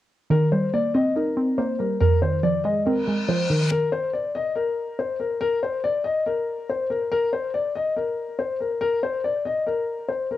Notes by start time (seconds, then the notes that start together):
0.30 D#3 A#4
0.52 G3 C5
0.74 A#3 D5
0.94 C4 D#5
1.16 D#4 A#4
1.37 C4
1.58 A#3 C5
1.79 G3 A#4
2.01 F2 A#4
2.22 D#3 C5
2.43 F3 D5
2.64 G#3 D#5
2.86 C4 A#4, reverse cymbal
3.08 G#3
3.28 F3 C5
3.50 D#3 A#4
3.71 A#4
3.92 C5
4.13 D5
4.35 D#5
4.55 A#4
4.99 C5
5.20 A#4
5.41 A#4
5.63 C5
5.84 D5
6.04 D#5
6.26 A#4
6.69 C5
6.90 A#4
7.12 A#4
7.33 C5
7.54 D5
7.75 D#5
7.97 A#4
8.39 C5
8.61 A#4
8.81 A#4
9.03 C5
9.24 D5
9.45 D#5
9.67 A#4
10.08 C5
10.31 A#4